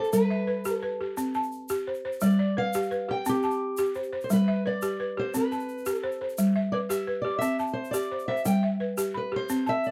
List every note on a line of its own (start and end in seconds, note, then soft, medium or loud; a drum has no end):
0.00 0.13 A4 medium
0.00 0.31 C5 medium
0.04 shaker soft
0.13 0.48 G3 medium
0.13 0.73 B4 medium
0.13 shaker medium
0.30 0.83 E5 medium
0.47 0.81 B4 medium
0.65 0.99 G4 medium
0.65 shaker medium
0.73 0.96 A4 medium
0.82 1.35 B4 medium
1.00 1.35 G4 medium
1.17 1.52 C4 medium
1.17 shaker medium
1.34 1.87 A5 medium
1.34 shaker soft
1.43 shaker soft
1.52 shaker soft
1.69 2.04 G4 medium
1.69 shaker medium
1.87 2.04 C5 medium
1.94 shaker soft
2.05 2.39 C5 medium
2.12 shaker soft
2.21 2.56 G3 medium
2.21 2.55 D5 medium
2.21 shaker medium
2.39 2.91 D5 medium
2.57 2.90 B4 medium
2.57 3.10 F5 loud
2.73 3.07 G4 medium
2.73 shaker medium
2.91 3.43 B4 medium
2.91 shaker soft
3.09 3.43 G4 medium
3.09 3.26 G5 loud
3.25 3.61 C4 medium
3.25 4.10 G4 medium
3.25 shaker medium
3.43 3.96 A5 medium
3.43 shaker soft
3.51 shaker soft
3.77 4.13 G4 medium
3.77 shaker medium
3.86 shaker soft
3.94 4.11 C5 medium
3.94 shaker soft
4.03 shaker soft
4.13 4.47 C5 medium
4.21 4.31 C5 medium
4.21 shaker soft
4.30 4.65 G3 medium
4.30 4.67 B4 loud
4.30 shaker medium
4.48 5.00 E5 medium
4.66 4.99 B4 medium
4.66 5.14 D5 medium
4.82 5.16 G4 medium
4.82 shaker medium
5.00 5.52 B4 medium
5.17 5.52 G4 medium
5.17 5.36 C5 medium
5.34 5.69 C4 medium
5.34 5.95 B4 medium
5.34 shaker medium
5.52 6.04 A5 medium
5.52 shaker soft
5.60 shaker soft
5.69 shaker soft
5.78 shaker soft
5.86 6.21 G4 medium
5.86 shaker medium
5.95 6.18 A4 medium
5.95 shaker soft
6.04 6.20 C5 medium
6.12 shaker soft
6.21 6.56 C5 medium
6.29 shaker soft
6.38 6.73 G3 medium
6.38 shaker medium
6.56 7.08 E5 medium
6.72 7.06 B4 medium
6.72 6.77 D5 medium
6.89 7.23 G4 medium
6.89 7.21 E5 medium
6.89 shaker medium
7.07 7.59 B4 medium
7.22 7.59 G4 medium
7.22 7.38 D5 medium
7.39 7.77 C4 medium
7.39 7.56 E5 medium
7.39 shaker medium
7.59 8.11 A5 medium
7.59 shaker soft
7.67 shaker soft
7.73 7.93 C5 medium
7.85 shaker soft
7.91 8.29 G4 medium
7.91 8.27 D5 medium
7.91 shaker medium
8.12 8.27 C5 medium
8.19 shaker soft
8.28 8.63 C5 medium
8.28 8.44 E5 medium
8.37 shaker soft
8.45 8.80 G3 medium
8.45 8.62 G5 loud
8.45 shaker medium
8.63 9.15 E5 medium
8.80 9.32 B4 medium
8.98 9.31 G4 medium
8.98 shaker medium
9.14 9.34 B4 medium
9.14 9.67 B5 medium
9.32 9.67 G4 medium
9.36 9.70 C5 medium
9.49 9.84 C4 medium
9.49 shaker medium
9.66 9.86 E5 medium
9.66 9.91 A5 medium
9.66 shaker soft
9.84 9.91 D5 medium
9.84 shaker soft